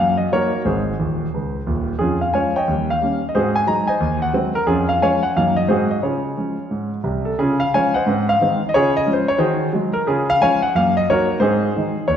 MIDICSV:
0, 0, Header, 1, 2, 480
1, 0, Start_track
1, 0, Key_signature, -5, "major"
1, 0, Tempo, 336134
1, 934, Time_signature, 4, 2, 24, 8
1, 17376, End_track
2, 0, Start_track
2, 0, Title_t, "Grand piano"
2, 0, Program_c, 0, 0
2, 0, Note_on_c, 0, 42, 66
2, 0, Note_on_c, 0, 58, 35
2, 0, Note_on_c, 0, 77, 82
2, 218, Note_off_c, 0, 77, 0
2, 236, Note_off_c, 0, 58, 0
2, 250, Note_on_c, 0, 75, 67
2, 366, Note_off_c, 0, 42, 0
2, 411, Note_off_c, 0, 75, 0
2, 459, Note_on_c, 0, 54, 40
2, 466, Note_on_c, 0, 58, 44
2, 469, Note_on_c, 0, 73, 80
2, 476, Note_on_c, 0, 66, 59
2, 477, Note_on_c, 0, 63, 36
2, 479, Note_on_c, 0, 70, 64
2, 722, Note_off_c, 0, 54, 0
2, 726, Note_off_c, 0, 58, 0
2, 734, Note_off_c, 0, 63, 0
2, 871, Note_off_c, 0, 73, 0
2, 912, Note_off_c, 0, 66, 0
2, 914, Note_off_c, 0, 70, 0
2, 927, Note_on_c, 0, 44, 50
2, 928, Note_on_c, 0, 32, 52
2, 934, Note_on_c, 0, 72, 61
2, 944, Note_on_c, 0, 63, 45
2, 946, Note_on_c, 0, 68, 49
2, 1314, Note_off_c, 0, 44, 0
2, 1315, Note_off_c, 0, 32, 0
2, 1417, Note_on_c, 0, 39, 50
2, 1418, Note_on_c, 0, 27, 52
2, 1776, Note_off_c, 0, 39, 0
2, 1777, Note_off_c, 0, 27, 0
2, 1915, Note_on_c, 0, 37, 41
2, 2268, Note_off_c, 0, 37, 0
2, 2379, Note_on_c, 0, 39, 52
2, 2384, Note_on_c, 0, 27, 58
2, 2419, Note_off_c, 0, 72, 0
2, 2629, Note_off_c, 0, 63, 0
2, 2629, Note_off_c, 0, 68, 0
2, 2738, Note_off_c, 0, 39, 0
2, 2741, Note_off_c, 0, 27, 0
2, 2837, Note_on_c, 0, 68, 67
2, 2841, Note_on_c, 0, 41, 57
2, 2863, Note_on_c, 0, 61, 46
2, 2869, Note_on_c, 0, 65, 48
2, 3105, Note_off_c, 0, 68, 0
2, 3144, Note_off_c, 0, 61, 0
2, 3147, Note_off_c, 0, 65, 0
2, 3160, Note_on_c, 0, 77, 55
2, 3255, Note_off_c, 0, 41, 0
2, 3308, Note_off_c, 0, 77, 0
2, 3335, Note_on_c, 0, 80, 65
2, 3337, Note_on_c, 0, 53, 34
2, 3340, Note_on_c, 0, 56, 36
2, 3346, Note_on_c, 0, 61, 35
2, 3351, Note_on_c, 0, 77, 53
2, 3353, Note_on_c, 0, 73, 58
2, 3595, Note_off_c, 0, 80, 0
2, 3601, Note_off_c, 0, 53, 0
2, 3603, Note_off_c, 0, 56, 0
2, 3607, Note_off_c, 0, 61, 0
2, 3629, Note_off_c, 0, 77, 0
2, 3630, Note_off_c, 0, 73, 0
2, 3657, Note_on_c, 0, 79, 72
2, 3661, Note_on_c, 0, 73, 51
2, 3681, Note_on_c, 0, 75, 54
2, 3822, Note_on_c, 0, 39, 56
2, 3860, Note_on_c, 0, 55, 34
2, 4070, Note_off_c, 0, 79, 0
2, 4111, Note_off_c, 0, 73, 0
2, 4112, Note_off_c, 0, 55, 0
2, 4122, Note_off_c, 0, 75, 0
2, 4147, Note_on_c, 0, 77, 72
2, 4227, Note_off_c, 0, 39, 0
2, 4309, Note_on_c, 0, 55, 42
2, 4313, Note_on_c, 0, 58, 35
2, 4329, Note_on_c, 0, 61, 41
2, 4570, Note_off_c, 0, 55, 0
2, 4572, Note_off_c, 0, 58, 0
2, 4584, Note_off_c, 0, 61, 0
2, 4613, Note_off_c, 0, 77, 0
2, 4695, Note_on_c, 0, 75, 58
2, 4779, Note_off_c, 0, 75, 0
2, 4780, Note_on_c, 0, 72, 73
2, 4784, Note_on_c, 0, 44, 65
2, 4786, Note_on_c, 0, 66, 61
2, 4788, Note_on_c, 0, 68, 62
2, 4805, Note_on_c, 0, 60, 41
2, 5039, Note_off_c, 0, 72, 0
2, 5062, Note_off_c, 0, 60, 0
2, 5066, Note_off_c, 0, 66, 0
2, 5067, Note_off_c, 0, 68, 0
2, 5078, Note_on_c, 0, 80, 84
2, 5189, Note_off_c, 0, 44, 0
2, 5228, Note_off_c, 0, 80, 0
2, 5238, Note_on_c, 0, 54, 44
2, 5248, Note_on_c, 0, 82, 84
2, 5252, Note_on_c, 0, 56, 41
2, 5253, Note_on_c, 0, 63, 51
2, 5508, Note_off_c, 0, 54, 0
2, 5512, Note_off_c, 0, 82, 0
2, 5517, Note_off_c, 0, 56, 0
2, 5518, Note_off_c, 0, 63, 0
2, 5533, Note_on_c, 0, 80, 76
2, 5551, Note_on_c, 0, 75, 68
2, 5558, Note_on_c, 0, 72, 57
2, 5715, Note_on_c, 0, 39, 64
2, 5966, Note_off_c, 0, 80, 0
2, 6016, Note_off_c, 0, 75, 0
2, 6020, Note_off_c, 0, 72, 0
2, 6027, Note_on_c, 0, 78, 79
2, 6133, Note_off_c, 0, 39, 0
2, 6190, Note_on_c, 0, 54, 45
2, 6202, Note_on_c, 0, 60, 63
2, 6207, Note_on_c, 0, 56, 38
2, 6436, Note_off_c, 0, 78, 0
2, 6462, Note_off_c, 0, 54, 0
2, 6471, Note_off_c, 0, 60, 0
2, 6474, Note_off_c, 0, 56, 0
2, 6501, Note_on_c, 0, 70, 87
2, 6659, Note_off_c, 0, 70, 0
2, 6665, Note_on_c, 0, 41, 71
2, 6666, Note_on_c, 0, 68, 75
2, 6682, Note_on_c, 0, 61, 55
2, 6684, Note_on_c, 0, 65, 60
2, 6940, Note_off_c, 0, 68, 0
2, 6974, Note_off_c, 0, 61, 0
2, 6975, Note_off_c, 0, 65, 0
2, 6980, Note_on_c, 0, 77, 77
2, 7088, Note_off_c, 0, 41, 0
2, 7138, Note_off_c, 0, 77, 0
2, 7167, Note_on_c, 0, 53, 45
2, 7171, Note_on_c, 0, 56, 39
2, 7174, Note_on_c, 0, 80, 74
2, 7181, Note_on_c, 0, 61, 44
2, 7184, Note_on_c, 0, 73, 72
2, 7184, Note_on_c, 0, 77, 72
2, 7435, Note_off_c, 0, 53, 0
2, 7437, Note_off_c, 0, 80, 0
2, 7438, Note_off_c, 0, 56, 0
2, 7445, Note_off_c, 0, 61, 0
2, 7465, Note_on_c, 0, 78, 80
2, 7466, Note_off_c, 0, 73, 0
2, 7467, Note_off_c, 0, 77, 0
2, 7622, Note_off_c, 0, 78, 0
2, 7659, Note_on_c, 0, 42, 66
2, 7660, Note_on_c, 0, 51, 36
2, 7664, Note_on_c, 0, 77, 75
2, 7665, Note_on_c, 0, 58, 38
2, 7679, Note_on_c, 0, 63, 32
2, 7923, Note_off_c, 0, 77, 0
2, 7924, Note_off_c, 0, 51, 0
2, 7928, Note_off_c, 0, 58, 0
2, 7938, Note_off_c, 0, 63, 0
2, 7947, Note_on_c, 0, 75, 78
2, 8068, Note_off_c, 0, 42, 0
2, 8103, Note_off_c, 0, 75, 0
2, 8111, Note_on_c, 0, 44, 62
2, 8119, Note_on_c, 0, 72, 75
2, 8125, Note_on_c, 0, 54, 39
2, 8127, Note_on_c, 0, 56, 33
2, 8134, Note_on_c, 0, 63, 40
2, 8139, Note_on_c, 0, 66, 61
2, 8140, Note_on_c, 0, 68, 57
2, 8144, Note_on_c, 0, 60, 47
2, 8389, Note_off_c, 0, 72, 0
2, 8393, Note_off_c, 0, 54, 0
2, 8395, Note_off_c, 0, 56, 0
2, 8400, Note_off_c, 0, 63, 0
2, 8407, Note_off_c, 0, 60, 0
2, 8425, Note_off_c, 0, 66, 0
2, 8425, Note_off_c, 0, 68, 0
2, 8436, Note_on_c, 0, 75, 64
2, 8532, Note_off_c, 0, 44, 0
2, 8589, Note_off_c, 0, 75, 0
2, 8607, Note_on_c, 0, 49, 50
2, 8611, Note_on_c, 0, 73, 55
2, 8633, Note_on_c, 0, 65, 41
2, 8637, Note_on_c, 0, 68, 43
2, 9021, Note_off_c, 0, 49, 0
2, 9089, Note_on_c, 0, 53, 31
2, 9101, Note_on_c, 0, 56, 27
2, 9107, Note_on_c, 0, 61, 37
2, 9357, Note_off_c, 0, 53, 0
2, 9365, Note_off_c, 0, 56, 0
2, 9369, Note_off_c, 0, 61, 0
2, 9578, Note_on_c, 0, 44, 41
2, 9841, Note_off_c, 0, 73, 0
2, 9988, Note_off_c, 0, 44, 0
2, 10011, Note_off_c, 0, 65, 0
2, 10013, Note_off_c, 0, 68, 0
2, 10046, Note_on_c, 0, 48, 50
2, 10049, Note_on_c, 0, 36, 50
2, 10355, Note_on_c, 0, 69, 60
2, 10437, Note_off_c, 0, 48, 0
2, 10439, Note_off_c, 0, 36, 0
2, 10508, Note_off_c, 0, 69, 0
2, 10548, Note_on_c, 0, 49, 67
2, 10551, Note_on_c, 0, 68, 72
2, 10565, Note_on_c, 0, 61, 64
2, 10570, Note_on_c, 0, 65, 57
2, 10808, Note_off_c, 0, 68, 0
2, 10840, Note_off_c, 0, 61, 0
2, 10842, Note_off_c, 0, 65, 0
2, 10850, Note_on_c, 0, 77, 85
2, 10954, Note_off_c, 0, 49, 0
2, 10997, Note_off_c, 0, 77, 0
2, 11047, Note_on_c, 0, 53, 42
2, 11057, Note_on_c, 0, 56, 37
2, 11057, Note_on_c, 0, 80, 89
2, 11067, Note_on_c, 0, 61, 53
2, 11071, Note_on_c, 0, 73, 65
2, 11082, Note_on_c, 0, 77, 61
2, 11302, Note_off_c, 0, 80, 0
2, 11305, Note_off_c, 0, 53, 0
2, 11311, Note_off_c, 0, 56, 0
2, 11319, Note_off_c, 0, 61, 0
2, 11333, Note_off_c, 0, 73, 0
2, 11339, Note_off_c, 0, 77, 0
2, 11343, Note_on_c, 0, 78, 83
2, 11360, Note_on_c, 0, 72, 65
2, 11365, Note_on_c, 0, 75, 55
2, 11515, Note_on_c, 0, 44, 72
2, 11553, Note_on_c, 0, 60, 50
2, 11757, Note_off_c, 0, 78, 0
2, 11803, Note_off_c, 0, 60, 0
2, 11805, Note_off_c, 0, 72, 0
2, 11808, Note_off_c, 0, 75, 0
2, 11839, Note_on_c, 0, 77, 89
2, 11918, Note_off_c, 0, 44, 0
2, 12012, Note_on_c, 0, 51, 47
2, 12025, Note_on_c, 0, 56, 48
2, 12025, Note_on_c, 0, 60, 52
2, 12268, Note_off_c, 0, 51, 0
2, 12277, Note_off_c, 0, 60, 0
2, 12278, Note_off_c, 0, 56, 0
2, 12302, Note_off_c, 0, 77, 0
2, 12409, Note_on_c, 0, 75, 75
2, 12479, Note_off_c, 0, 75, 0
2, 12482, Note_on_c, 0, 49, 63
2, 12485, Note_on_c, 0, 73, 96
2, 12499, Note_on_c, 0, 65, 67
2, 12502, Note_on_c, 0, 68, 81
2, 12747, Note_off_c, 0, 73, 0
2, 12780, Note_off_c, 0, 65, 0
2, 12781, Note_off_c, 0, 68, 0
2, 12803, Note_on_c, 0, 75, 95
2, 12882, Note_off_c, 0, 49, 0
2, 12933, Note_on_c, 0, 53, 45
2, 12942, Note_on_c, 0, 61, 49
2, 12947, Note_on_c, 0, 56, 46
2, 13017, Note_off_c, 0, 75, 0
2, 13039, Note_on_c, 0, 72, 74
2, 13200, Note_off_c, 0, 53, 0
2, 13206, Note_off_c, 0, 61, 0
2, 13209, Note_off_c, 0, 56, 0
2, 13226, Note_off_c, 0, 72, 0
2, 13257, Note_on_c, 0, 73, 90
2, 13395, Note_off_c, 0, 73, 0
2, 13399, Note_on_c, 0, 72, 74
2, 13401, Note_on_c, 0, 51, 76
2, 13414, Note_on_c, 0, 68, 58
2, 13421, Note_on_c, 0, 66, 62
2, 13816, Note_off_c, 0, 72, 0
2, 13818, Note_off_c, 0, 51, 0
2, 13864, Note_off_c, 0, 68, 0
2, 13867, Note_off_c, 0, 66, 0
2, 13894, Note_on_c, 0, 54, 56
2, 13914, Note_on_c, 0, 56, 51
2, 14160, Note_off_c, 0, 54, 0
2, 14174, Note_off_c, 0, 56, 0
2, 14187, Note_on_c, 0, 70, 79
2, 14343, Note_off_c, 0, 70, 0
2, 14378, Note_on_c, 0, 49, 71
2, 14385, Note_on_c, 0, 68, 74
2, 14389, Note_on_c, 0, 61, 68
2, 14402, Note_on_c, 0, 65, 60
2, 14643, Note_off_c, 0, 68, 0
2, 14670, Note_off_c, 0, 61, 0
2, 14676, Note_off_c, 0, 65, 0
2, 14704, Note_on_c, 0, 77, 104
2, 14787, Note_off_c, 0, 49, 0
2, 14844, Note_off_c, 0, 77, 0
2, 14866, Note_on_c, 0, 53, 48
2, 14867, Note_on_c, 0, 56, 42
2, 14875, Note_on_c, 0, 80, 103
2, 14888, Note_on_c, 0, 61, 51
2, 14888, Note_on_c, 0, 73, 78
2, 14894, Note_on_c, 0, 77, 72
2, 15128, Note_off_c, 0, 53, 0
2, 15129, Note_off_c, 0, 56, 0
2, 15129, Note_off_c, 0, 80, 0
2, 15144, Note_off_c, 0, 61, 0
2, 15160, Note_off_c, 0, 73, 0
2, 15163, Note_off_c, 0, 77, 0
2, 15172, Note_on_c, 0, 78, 85
2, 15317, Note_off_c, 0, 78, 0
2, 15353, Note_on_c, 0, 42, 74
2, 15363, Note_on_c, 0, 77, 89
2, 15375, Note_on_c, 0, 58, 50
2, 15613, Note_off_c, 0, 77, 0
2, 15629, Note_off_c, 0, 58, 0
2, 15663, Note_on_c, 0, 75, 95
2, 15754, Note_off_c, 0, 42, 0
2, 15803, Note_off_c, 0, 75, 0
2, 15849, Note_on_c, 0, 73, 86
2, 15850, Note_on_c, 0, 54, 47
2, 15856, Note_on_c, 0, 58, 47
2, 15859, Note_on_c, 0, 63, 61
2, 15863, Note_on_c, 0, 66, 70
2, 15870, Note_on_c, 0, 70, 76
2, 16105, Note_off_c, 0, 54, 0
2, 16109, Note_off_c, 0, 58, 0
2, 16112, Note_off_c, 0, 63, 0
2, 16243, Note_off_c, 0, 73, 0
2, 16277, Note_on_c, 0, 44, 76
2, 16277, Note_on_c, 0, 72, 85
2, 16288, Note_off_c, 0, 66, 0
2, 16292, Note_off_c, 0, 70, 0
2, 16307, Note_on_c, 0, 68, 67
2, 16312, Note_on_c, 0, 63, 58
2, 16313, Note_on_c, 0, 60, 45
2, 16573, Note_off_c, 0, 60, 0
2, 16693, Note_off_c, 0, 44, 0
2, 16792, Note_off_c, 0, 63, 0
2, 16798, Note_on_c, 0, 51, 38
2, 16805, Note_on_c, 0, 56, 39
2, 16814, Note_on_c, 0, 63, 47
2, 17056, Note_off_c, 0, 51, 0
2, 17061, Note_off_c, 0, 56, 0
2, 17067, Note_off_c, 0, 63, 0
2, 17101, Note_off_c, 0, 72, 0
2, 17204, Note_off_c, 0, 68, 0
2, 17246, Note_on_c, 0, 73, 81
2, 17247, Note_on_c, 0, 39, 55
2, 17376, Note_off_c, 0, 39, 0
2, 17376, Note_off_c, 0, 73, 0
2, 17376, End_track
0, 0, End_of_file